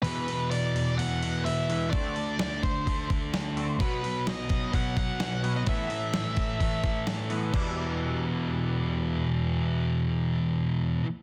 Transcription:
<<
  \new Staff \with { instrumentName = "Lead electric guitar" } { \time 4/4 \key e \minor \tempo 4 = 128 b'4 d''4 fis''4 e''4 | d''4 d''8 c''4 r4. | b'4 dis''4 fis''8 fis''4~ fis''16 dis''16 | e''2. r4 |
r1 | r1 | }
  \new Staff \with { instrumentName = "Distorted electric guitar" } { \clef bass \time 4/4 \key e \minor <e, b, e>2 <e, b, e>2 | <d a d'>2 <d a d'>2 | <b, fis b>2 <b, fis b>2 | <a, e a>2 <a, e a>2 |
<e, b, e>1~ | <e, b, e>1 | }
  \new Staff \with { instrumentName = "Clean electric guitar" } { \clef bass \time 4/4 \key e \minor <e, b, e>8 <e, b,>8 <e, b,>8 <e, b,>8 <e, b,>8 <e, b,>8 <e, b,>8 <e, b, e>8 | <d a c'>8 <d a>8 <d a>8 <d a>8 <d a>8 <d a>8 <d a>8 <d a c'>8 | <b, fis b>8 <b, fis>8 <b, fis>8 <b, fis>8 <b, fis>8 <b, fis>8 <b, fis>8 <b, fis b>8 | <a, e b>8 <a, e>8 <a, e>8 <a, e>8 <a, e>8 <a, e>8 <a, e>8 <a, e b>8 |
<e, b, e g d' e'>1~ | <e, b, e g d' e'>1 | }
  \new DrumStaff \with { instrumentName = "Drums" } \drummode { \time 4/4 hho8 hho8 hho8 hho8 hho8 hho8 hho8 hho8 | <hho bd>8 hho8 <hho sn>8 <hho bd>8 <hho bd>8 <hho bd>8 <hho sn>8 hho8 | <hho bd>8 hho8 <hho sn>8 <hho bd>8 <hho bd>8 <hho bd>8 <hho sn>8 hho8 | <hho bd>8 hho8 <hho sn>8 <hho bd>8 <hho bd>8 <hho bd>8 <hho sn>8 hho8 |
<cymc bd>4 r4 r4 r4 | r4 r4 r4 r4 | }
>>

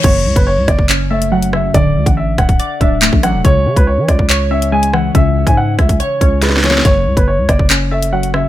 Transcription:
<<
  \new Staff \with { instrumentName = "Grand piano" } { \time 4/4 \key fis \minor \tempo 4 = 141 cis''8. b'16 cis''8 d''8 r8 e''8 fis''8 e''8 | d''8. fis''16 e''8 fis''4 e''4 fis''8 | cis''8. b'16 cis''8 d''8 r8 e''8 gis''8 fis''8 | e''8. gis''16 fis''8 e''8 cis''8 cis''8 b'8 cis''8 |
cis''8. b'16 cis''8 d''8 r8 e''8 fis''8 e''8 | }
  \new Staff \with { instrumentName = "Synth keys" } { \clef bass \time 4/4 \key fis \minor fis,2 cis'8 a8 fis8 cis8 | d2 d''8 d'8 a8 fis8 | cis2 cis''8 cis'8 gis8 e8 | cis2 cis''8 cis'8 gis8 e8 |
fis,2 cis'8 a8 fis8 cis8 | }
  \new Staff \with { instrumentName = "808-style bass" } { \clef bass \time 4/4 \key fis \minor fis,,8 cis,16 fis,,8 cis,16 fis,,2~ fis,,8 | d,,8 d,16 a,,8. d,,8 r8 d,,8. a,,8 e,,16 | cis,8 cis16 cis,8 e16 cis,2~ cis,8 | cis,8. gis,8. cis,8 r8 cis,4. |
fis,,8 cis,16 fis,,8 cis,16 fis,,2~ fis,,8 | }
  \new DrumStaff \with { instrumentName = "Drums" } \drummode { \time 4/4 <cymc hh bd>8. <hh bd>16 r8 <hh bd ss>16 bd16 <hc hh>8. hh16 r16 hh16 ss8 | <hh bd>8. <hh bd>16 r8 <hh bd ss>16 <hh bd>16 hh8 <hh bd>8 <hc hh>16 bd16 <hh ss>8 | <hh bd>8. <hh bd>16 r8 <hh bd ss>16 bd16 <hc hh>8. hh16 r16 hh16 ss8 | <hh bd>8. <hh bd>16 r8 <hh bd ss>16 <hh bd>16 hh8 <hh bd>8 \tuplet 3/2 { <hh sn>16 sn16 sn16 <hh sn>16 sn16 sn16 } |
<hh bd>8. <hh bd>16 r8 <hh bd ss>16 bd16 <hc hh>8. hh16 r16 hh16 ss8 | }
>>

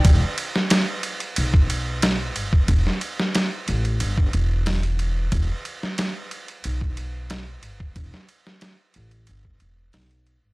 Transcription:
<<
  \new Staff \with { instrumentName = "Upright bass" } { \clef bass \time 4/4 \key e \minor \tempo 4 = 91 e,,16 r4. r16 b,,4. g,,16 r16 | e,,16 r4 r16 a,,8 g,,8 e,,4. | e,,16 r4. r16 b,,4. g,,16 r16 | e,,16 r4 r16 a,,8 g,,8 e,,8 b,,8. g,,16 | }
  \new DrumStaff \with { instrumentName = "Drums" } \drummode { \time 4/4 <bd cymr>8 cymr16 sn16 <cymr sn>8 cymr16 cymr16 cymr16 bd16 cymr8 <cymr sn>8 cymr16 bd16 | <bd cymr>16 sn16 cymr16 sn16 <cymr sn>8 cymr16 cymr16 cymr16 bd16 cymr8 <hho sn>16 cymr16 cymr8 | <bd cymr>8 cymr16 sn16 <cymr sn>8 cymr16 cymr16 cymr16 bd16 cymr8 <cymr sn>8 cymr16 bd16 | <bd cymr>16 sn16 cymr16 sn16 <cymr sn>8 cymr16 cymr16 cymr16 bd16 cymr8 <hho sn>16 cymr16 cymr8 | }
>>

